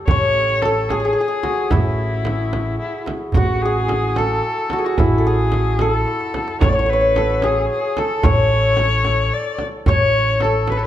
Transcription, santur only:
0.00 0.97 G4 medium
0.00 0.65 A4 medium
0.11 2.66 C#5 medium
0.65 0.97 A4 medium
0.91 0.99 G#4 medium
1.00 1.05 G#4 medium
1.05 1.12 G#4 medium
1.13 1.20 G#4 medium
1.20 1.28 G#4 medium
1.28 3.65 G#4 medium
1.43 3.37 F#4 medium
1.71 4.99 E4 medium
3.37 4.73 F#4 medium
3.65 4.24 G#4 medium
4.18 4.85 A4 medium
4.73 4.86 F#4 medium
4.79 5.24 G#4 medium
4.86 8.11 F#4 medium
4.99 8.47 E4 medium
5.18 5.33 A4 medium
5.27 5.87 G#4 medium
5.81 7.17 A4 medium
6.64 6.72 C#5 medium
6.73 6.79 C#5 medium
6.79 6.86 C#5 medium
6.86 6.93 C#5 medium
6.93 7.01 C#5 medium
7.01 8.24 C#5 medium
7.17 7.50 A4 medium
7.44 8.04 G#4 medium
7.98 10.44 A4 medium
8.24 9.88 C#5 medium
9.89 10.87 C#5 loud
10.44 10.87 A4 medium
10.72 10.79 B4 medium
10.79 10.85 B4 medium

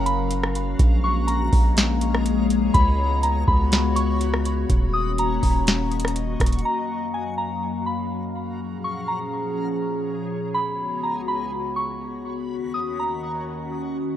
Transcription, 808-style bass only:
0.00 0.75 F#1 loud
0.79 1.50 A#1 loud
1.53 2.71 A#1 loud
2.74 3.45 C#2 loud
3.48 4.66 C#2 loud
4.70 5.40 D#1 loud
5.43 6.36 D#1 loud
6.40 6.64 D#1 loud

